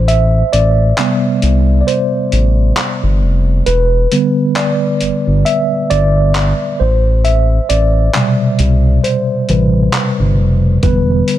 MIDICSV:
0, 0, Header, 1, 4, 480
1, 0, Start_track
1, 0, Key_signature, 0, "minor"
1, 0, Tempo, 895522
1, 45, Time_signature, 4, 2, 24, 8
1, 6103, End_track
2, 0, Start_track
2, 0, Title_t, "Tine electric piano"
2, 0, Program_c, 0, 4
2, 0, Control_c, 0, 64, 127
2, 0, Note_on_c, 0, 72, 80
2, 43, Note_on_c, 0, 76, 102
2, 282, Note_on_c, 0, 74, 94
2, 291, Note_off_c, 0, 76, 0
2, 526, Note_on_c, 0, 48, 52
2, 530, Note_on_c, 0, 55, 47
2, 533, Note_on_c, 0, 59, 57
2, 859, Note_off_c, 0, 48, 0
2, 861, Note_off_c, 0, 55, 0
2, 863, Note_off_c, 0, 59, 0
2, 951, Note_off_c, 0, 74, 0
2, 969, Note_on_c, 0, 74, 55
2, 1003, Note_off_c, 0, 72, 0
2, 1003, Note_off_c, 0, 74, 0
2, 1003, Note_on_c, 0, 72, 77
2, 1463, Note_off_c, 0, 72, 0
2, 1963, Note_on_c, 0, 71, 86
2, 1971, Control_c, 0, 64, 0
2, 2057, Control_c, 0, 64, 127
2, 2207, Note_on_c, 0, 50, 54
2, 2211, Note_on_c, 0, 55, 52
2, 2213, Note_on_c, 0, 59, 61
2, 2442, Note_on_c, 0, 74, 87
2, 2459, Note_off_c, 0, 71, 0
2, 2905, Note_off_c, 0, 50, 0
2, 2906, Note_off_c, 0, 55, 0
2, 2908, Note_off_c, 0, 59, 0
2, 2923, Note_on_c, 0, 76, 100
2, 2938, Note_off_c, 0, 74, 0
2, 3031, Note_off_c, 0, 76, 0
2, 3163, Note_on_c, 0, 74, 99
2, 3644, Note_on_c, 0, 72, 82
2, 3653, Control_c, 0, 64, 0
2, 3659, Note_off_c, 0, 74, 0
2, 3758, Control_c, 0, 64, 127
2, 3883, Note_on_c, 0, 76, 96
2, 3892, Note_off_c, 0, 72, 0
2, 4123, Note_on_c, 0, 74, 92
2, 4131, Note_off_c, 0, 76, 0
2, 4367, Note_on_c, 0, 48, 51
2, 4371, Note_on_c, 0, 55, 48
2, 4374, Note_on_c, 0, 47, 59
2, 4843, Note_on_c, 0, 72, 77
2, 4866, Note_off_c, 0, 74, 0
2, 5081, Note_off_c, 0, 48, 0
2, 5083, Note_off_c, 0, 55, 0
2, 5088, Note_on_c, 0, 48, 47
2, 5090, Note_on_c, 0, 55, 43
2, 5092, Note_on_c, 0, 71, 54
2, 5303, Note_off_c, 0, 72, 0
2, 5305, Note_off_c, 0, 48, 0
2, 5306, Note_off_c, 0, 55, 0
2, 5307, Note_off_c, 0, 71, 0
2, 5788, Note_off_c, 0, 47, 0
2, 5805, Note_on_c, 0, 71, 87
2, 5808, Note_on_c, 0, 50, 53
2, 5812, Control_c, 0, 64, 0
2, 5812, Note_on_c, 0, 55, 50
2, 5815, Note_on_c, 0, 59, 58
2, 5906, Control_c, 0, 64, 127
2, 6103, Note_off_c, 0, 50, 0
2, 6103, Note_off_c, 0, 55, 0
2, 6103, Note_off_c, 0, 59, 0
2, 6103, Note_off_c, 0, 71, 0
2, 6103, End_track
3, 0, Start_track
3, 0, Title_t, "Analog synth bass"
3, 0, Program_c, 1, 38
3, 0, Note_on_c, 1, 33, 92
3, 231, Note_off_c, 1, 33, 0
3, 286, Note_on_c, 1, 33, 99
3, 498, Note_off_c, 1, 33, 0
3, 766, Note_on_c, 1, 36, 87
3, 978, Note_off_c, 1, 36, 0
3, 1246, Note_on_c, 1, 33, 87
3, 1458, Note_off_c, 1, 33, 0
3, 1625, Note_on_c, 1, 31, 86
3, 1726, Note_on_c, 1, 29, 91
3, 1734, Note_off_c, 1, 31, 0
3, 1938, Note_off_c, 1, 29, 0
3, 1966, Note_on_c, 1, 28, 104
3, 2178, Note_off_c, 1, 28, 0
3, 2687, Note_on_c, 1, 31, 46
3, 2742, Note_off_c, 1, 31, 0
3, 2826, Note_on_c, 1, 31, 81
3, 2914, Note_off_c, 1, 31, 0
3, 3167, Note_on_c, 1, 31, 91
3, 3502, Note_off_c, 1, 31, 0
3, 3647, Note_on_c, 1, 33, 98
3, 4071, Note_off_c, 1, 33, 0
3, 4126, Note_on_c, 1, 33, 95
3, 4338, Note_off_c, 1, 33, 0
3, 4606, Note_on_c, 1, 36, 91
3, 4818, Note_off_c, 1, 36, 0
3, 5086, Note_on_c, 1, 33, 81
3, 5298, Note_off_c, 1, 33, 0
3, 5465, Note_on_c, 1, 31, 88
3, 5567, Note_on_c, 1, 29, 89
3, 5575, Note_off_c, 1, 31, 0
3, 5779, Note_off_c, 1, 29, 0
3, 5806, Note_on_c, 1, 28, 104
3, 6018, Note_off_c, 1, 28, 0
3, 6103, End_track
4, 0, Start_track
4, 0, Title_t, "Drums"
4, 45, Note_on_c, 9, 42, 57
4, 98, Note_off_c, 9, 42, 0
4, 285, Note_on_c, 9, 42, 72
4, 339, Note_off_c, 9, 42, 0
4, 525, Note_on_c, 9, 39, 106
4, 529, Note_on_c, 9, 42, 69
4, 578, Note_off_c, 9, 39, 0
4, 582, Note_off_c, 9, 42, 0
4, 763, Note_on_c, 9, 42, 56
4, 816, Note_off_c, 9, 42, 0
4, 1007, Note_on_c, 9, 42, 60
4, 1060, Note_off_c, 9, 42, 0
4, 1245, Note_on_c, 9, 42, 56
4, 1298, Note_off_c, 9, 42, 0
4, 1483, Note_on_c, 9, 42, 66
4, 1484, Note_on_c, 9, 39, 109
4, 1537, Note_off_c, 9, 42, 0
4, 1538, Note_off_c, 9, 39, 0
4, 1964, Note_on_c, 9, 42, 61
4, 2017, Note_off_c, 9, 42, 0
4, 2206, Note_on_c, 9, 42, 74
4, 2259, Note_off_c, 9, 42, 0
4, 2445, Note_on_c, 9, 39, 102
4, 2449, Note_on_c, 9, 42, 65
4, 2498, Note_off_c, 9, 39, 0
4, 2502, Note_off_c, 9, 42, 0
4, 2683, Note_on_c, 9, 42, 62
4, 2736, Note_off_c, 9, 42, 0
4, 2927, Note_on_c, 9, 42, 62
4, 2980, Note_off_c, 9, 42, 0
4, 3166, Note_on_c, 9, 42, 57
4, 3219, Note_off_c, 9, 42, 0
4, 3404, Note_on_c, 9, 42, 63
4, 3405, Note_on_c, 9, 39, 116
4, 3457, Note_off_c, 9, 42, 0
4, 3458, Note_off_c, 9, 39, 0
4, 3884, Note_on_c, 9, 42, 57
4, 3938, Note_off_c, 9, 42, 0
4, 4125, Note_on_c, 9, 42, 70
4, 4179, Note_off_c, 9, 42, 0
4, 4365, Note_on_c, 9, 39, 105
4, 4369, Note_on_c, 9, 42, 61
4, 4419, Note_off_c, 9, 39, 0
4, 4423, Note_off_c, 9, 42, 0
4, 4603, Note_on_c, 9, 42, 59
4, 4656, Note_off_c, 9, 42, 0
4, 4847, Note_on_c, 9, 42, 61
4, 4901, Note_off_c, 9, 42, 0
4, 5085, Note_on_c, 9, 42, 54
4, 5138, Note_off_c, 9, 42, 0
4, 5324, Note_on_c, 9, 39, 115
4, 5324, Note_on_c, 9, 42, 65
4, 5377, Note_off_c, 9, 42, 0
4, 5378, Note_off_c, 9, 39, 0
4, 5804, Note_on_c, 9, 42, 63
4, 5805, Note_on_c, 9, 36, 108
4, 5857, Note_off_c, 9, 42, 0
4, 5858, Note_off_c, 9, 36, 0
4, 6045, Note_on_c, 9, 42, 74
4, 6098, Note_off_c, 9, 42, 0
4, 6103, End_track
0, 0, End_of_file